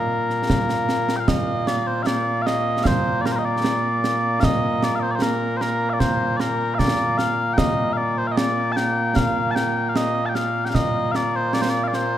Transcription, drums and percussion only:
0.30 snare soft
0.50 concert bass drum medium
0.50 snare loud
0.69 snare medium
0.89 snare medium
1.09 snare medium
1.28 concert bass drum medium
1.28 snare loud
1.67 snare medium
2.07 snare loud
2.47 snare medium
2.85 concert bass drum medium
2.85 snare loud
3.26 snare medium
3.64 snare loud
4.04 snare medium
4.43 concert bass drum medium
4.43 snare loud
4.83 snare medium
5.22 snare loud
5.61 snare medium
6.00 concert bass drum medium
6.00 snare medium
6.40 snare medium
6.79 concert bass drum medium
6.79 snare loud
7.19 snare medium
7.58 concert bass drum medium
7.58 snare loud
8.37 snare loud
8.77 snare medium
9.16 concert bass drum medium
9.16 snare loud
9.56 snare medium
9.96 snare medium
10.35 snare medium
10.75 concert bass drum medium
10.75 snare medium
11.15 snare medium
11.53 snare medium
11.93 snare medium

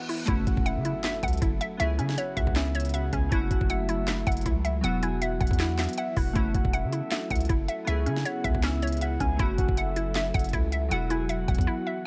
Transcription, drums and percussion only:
0.09 open hi-hat medium
0.28 kick loud
0.28 closed hi-hat medium
0.47 kick loud
0.47 closed hi-hat medium
0.57 kick loud
0.66 closed hi-hat medium
0.85 closed hi-hat medium
1.04 snare loud
1.04 clap loud
1.04 closed hi-hat medium
1.23 kick medium
1.23 closed hi-hat medium
1.28 closed hi-hat medium
1.33 closed hi-hat medium
1.37 closed hi-hat soft
1.42 kick loud
1.42 closed hi-hat medium
1.61 closed hi-hat medium
1.80 closed hi-hat medium
1.99 closed hi-hat medium
2.09 snare medium
2.18 closed hi-hat medium
2.37 kick loud
2.37 closed hi-hat medium
2.47 kick loud
2.56 snare loud
2.56 clap loud
2.56 closed hi-hat medium
2.75 closed hi-hat medium
2.80 closed hi-hat medium
2.85 closed hi-hat medium
2.89 closed hi-hat soft
2.94 closed hi-hat medium
3.13 kick loud
3.13 closed hi-hat medium
3.32 kick loud
3.32 closed hi-hat medium
3.51 kick medium
3.51 closed hi-hat medium
3.61 kick loud
3.70 closed hi-hat medium
3.89 closed hi-hat medium
4.07 snare loud
4.07 clap medium
4.07 closed hi-hat medium
4.27 kick medium
4.27 closed hi-hat medium
4.32 closed hi-hat medium
4.37 closed hi-hat medium
4.41 closed hi-hat soft
4.46 kick loud
4.46 closed hi-hat medium
4.65 closed hi-hat medium
4.84 closed hi-hat medium
5.03 closed hi-hat medium
5.22 closed hi-hat medium
5.41 kick loud
5.41 closed hi-hat soft
5.47 kick loud
5.47 closed hi-hat medium
5.53 closed hi-hat medium
5.59 snare loud
5.59 clap loud
5.59 closed hi-hat medium
5.78 snare loud
5.78 clap medium
5.78 closed hi-hat medium
5.84 closed hi-hat medium
5.89 closed hi-hat medium
5.93 closed hi-hat medium
5.98 closed hi-hat medium
6.17 kick loud
6.17 open hi-hat medium
6.36 kick loud
6.36 closed hi-hat medium
6.54 kick loud
6.54 closed hi-hat medium
6.65 kick loud
6.74 closed hi-hat medium
6.93 closed hi-hat medium
7.11 snare loud
7.11 clap loud
7.11 closed hi-hat medium
7.30 kick loud
7.30 closed hi-hat medium
7.36 closed hi-hat medium
7.41 closed hi-hat medium
7.45 closed hi-hat soft
7.49 kick loud
7.49 closed hi-hat medium
7.68 closed hi-hat medium
7.87 closed hi-hat medium
8.06 closed hi-hat medium
8.16 snare medium
8.25 closed hi-hat medium
8.44 kick loud
8.44 closed hi-hat medium
8.55 kick loud
8.63 snare loud
8.63 clap loud
8.63 closed hi-hat medium
8.82 closed hi-hat medium
8.87 closed hi-hat medium
8.92 closed hi-hat medium
8.97 closed hi-hat soft
9.01 closed hi-hat medium
9.20 kick loud
9.20 closed hi-hat medium
9.39 kick loud
9.39 closed hi-hat medium
9.58 kick loud
9.58 closed hi-hat medium
9.69 kick loud
9.77 closed hi-hat medium
9.96 closed hi-hat medium
10.15 snare loud
10.15 clap loud
10.15 closed hi-hat medium
10.34 kick loud
10.34 closed hi-hat medium
10.39 closed hi-hat medium
10.44 closed hi-hat medium
10.49 closed hi-hat soft
10.53 kick loud
10.53 closed hi-hat medium
10.72 closed hi-hat medium
10.91 closed hi-hat medium
11.10 closed hi-hat medium
11.29 closed hi-hat medium
11.48 kick loud
11.48 closed hi-hat soft
11.55 kick loud
11.55 closed hi-hat medium
11.61 closed hi-hat medium

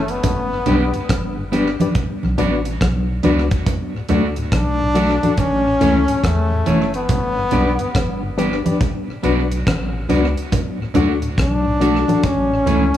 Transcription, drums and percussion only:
0.08 closed hi-hat medium
0.23 kick loud
0.23 closed hi-hat loud
0.23 low conga medium
0.66 closed hi-hat medium
0.66 low conga medium
0.94 closed hi-hat medium
1.09 kick loud
1.09 cross-stick loud
1.09 closed hi-hat medium
1.09 high conga medium
1.52 closed hi-hat medium
1.52 high conga medium
1.80 closed hi-hat medium
1.80 high conga medium
1.95 kick loud
1.95 closed hi-hat medium
1.95 low conga medium
2.23 high conga medium
2.38 closed hi-hat medium
2.38 low conga medium
2.65 closed hi-hat medium
2.81 kick loud
2.81 cross-stick loud
2.81 closed hi-hat medium
2.81 high conga medium
3.23 closed hi-hat medium
3.23 high conga medium
3.23 low conga medium
3.51 kick loud
3.51 closed hi-hat medium
3.66 kick loud
3.66 closed hi-hat loud
3.66 low conga medium
4.09 closed hi-hat medium
4.09 low conga medium
4.36 closed hi-hat medium
4.52 kick loud
4.52 cross-stick loud
4.52 closed hi-hat medium
4.52 high conga medium
4.95 closed hi-hat medium
4.95 high conga medium
5.23 closed hi-hat medium
5.23 high conga medium
5.37 kick loud
5.37 closed hi-hat medium
5.37 low conga medium
5.81 closed hi-hat medium
5.81 low conga medium
6.08 closed hi-hat medium
6.24 kick medium
6.24 cross-stick loud
6.24 closed hi-hat medium
6.24 high conga medium
6.66 closed hi-hat medium
6.66 low conga medium
6.94 closed hi-hat medium
7.09 kick loud
7.09 closed hi-hat loud
7.09 low conga medium
7.51 closed hi-hat medium
7.51 low conga medium
7.79 closed hi-hat medium
7.94 kick loud
7.94 cross-stick loud
7.94 closed hi-hat loud
7.94 high conga medium
8.38 closed hi-hat medium
8.38 high conga medium
8.66 closed hi-hat medium
8.66 high conga medium
8.81 kick loud
8.81 closed hi-hat medium
8.81 low conga medium
9.23 closed hi-hat medium
9.23 low conga medium
9.51 closed hi-hat medium
9.66 kick loud
9.66 cross-stick loud
9.66 closed hi-hat medium
9.66 high conga medium
10.09 closed hi-hat medium
10.09 low conga medium
10.37 closed hi-hat medium
10.52 kick loud
10.52 closed hi-hat loud
10.52 low conga medium
10.94 closed hi-hat medium
10.94 low conga medium
11.22 closed hi-hat medium
11.38 kick loud
11.38 cross-stick loud
11.38 closed hi-hat medium
11.38 high conga medium
11.81 closed hi-hat medium
11.81 high conga medium
12.08 closed hi-hat medium
12.08 high conga medium
12.23 kick loud
12.23 closed hi-hat medium
12.23 low conga medium
12.66 closed hi-hat medium
12.66 low conga medium

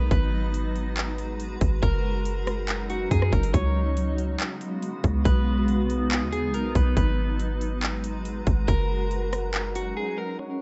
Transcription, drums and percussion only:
0.11 kick loud
0.11 closed hi-hat medium
0.54 closed hi-hat medium
0.76 closed hi-hat medium
0.97 clap loud
0.97 closed hi-hat medium
1.18 closed hi-hat medium
1.40 closed hi-hat medium
1.61 kick loud
1.61 closed hi-hat medium
1.83 kick loud
1.83 closed hi-hat medium
2.25 closed hi-hat medium
2.47 cross-stick loud
2.47 closed hi-hat medium
2.68 clap loud
2.68 closed hi-hat medium
2.90 closed hi-hat medium
3.11 kick medium
3.11 closed hi-hat medium
3.22 cross-stick medium
3.32 kick loud
3.32 closed hi-hat medium
3.43 closed hi-hat medium
3.54 kick loud
3.54 closed hi-hat medium
3.97 closed hi-hat medium
4.18 closed hi-hat medium
4.40 clap loud
4.40 closed hi-hat medium
4.61 closed hi-hat medium
4.82 closed hi-hat medium
5.04 kick loud
5.04 closed hi-hat medium
5.25 kick loud
5.25 closed hi-hat medium
5.68 closed hi-hat medium
5.90 closed hi-hat medium
6.11 clap loud
6.11 closed hi-hat medium
6.32 closed hi-hat medium
6.54 closed hi-hat medium
6.75 kick loud
6.75 closed hi-hat medium
6.97 kick loud
6.97 closed hi-hat medium
7.39 closed hi-hat medium
7.61 closed hi-hat medium
7.82 clap loud
7.82 closed hi-hat medium
8.04 closed hi-hat medium
8.25 closed hi-hat medium
8.47 kick loud
8.47 closed hi-hat medium
8.68 kick loud
8.68 closed hi-hat medium
9.11 closed hi-hat medium
9.33 cross-stick loud
9.33 closed hi-hat medium
9.54 clap loud
9.54 closed hi-hat medium
9.75 closed hi-hat medium

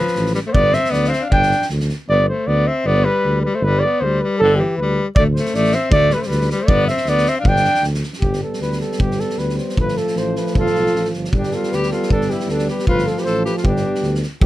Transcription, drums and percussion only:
0.07 snare soft
0.15 snare soft
0.26 snare soft
0.34 snare soft
0.55 kick loud
0.73 snare soft
0.84 snare soft
0.93 snare soft
1.04 snare soft
1.13 snare soft
1.32 kick loud
1.42 snare soft
1.51 snare soft
1.62 snare soft
1.69 snare soft
1.80 snare soft
1.89 snare soft
5.16 kick loud
5.36 snare soft
5.45 snare soft
5.54 snare soft
5.64 snare soft
5.72 snare soft
5.92 kick loud
6.10 snare soft
6.22 snare soft
6.31 snare soft
6.41 snare soft
6.50 snare soft
6.68 kick loud
6.88 snare soft
6.97 snare soft
7.06 snare soft
7.18 snare soft
7.26 snare soft
7.45 kick medium
7.56 snare soft
7.64 snare soft
7.74 snare soft
7.83 snare soft
7.94 snare soft
8.03 snare soft
8.13 snare soft
8.22 kick medium
8.33 snare soft
8.53 snare soft
8.62 snare soft
8.72 snare soft
8.80 snare soft
8.92 snare soft
9.00 kick medium
9.11 snare soft
9.19 snare soft
9.30 snare soft
9.38 snare soft
9.49 snare soft
9.58 snare soft
9.69 snare soft
9.77 kick medium
9.88 snare soft
9.97 snare soft
10.07 snare soft
10.16 snare soft
10.36 snare soft
10.46 snare soft
10.55 kick medium
10.66 snare soft
10.75 snare soft
10.86 snare soft
10.95 snare soft
11.05 snare soft
11.13 snare soft
11.24 snare soft
11.33 kick medium
11.43 snare soft
11.51 snare soft
11.63 snare soft
11.72 snare soft
11.83 snare soft
11.91 snare soft
12.03 snare soft
12.10 kick medium
12.21 snare soft
12.30 snare soft
12.40 snare soft
12.49 snare soft
12.58 snare soft
12.68 snare soft
12.79 snare soft
12.87 kick medium
12.98 snare soft
13.07 snare soft
13.17 snare soft
13.26 snare soft
13.45 snare soft
13.57 snare soft
13.65 kick medium
13.76 snare soft
13.95 snare soft
14.03 snare soft
14.15 snare soft
14.22 snare soft
14.41 kick loud

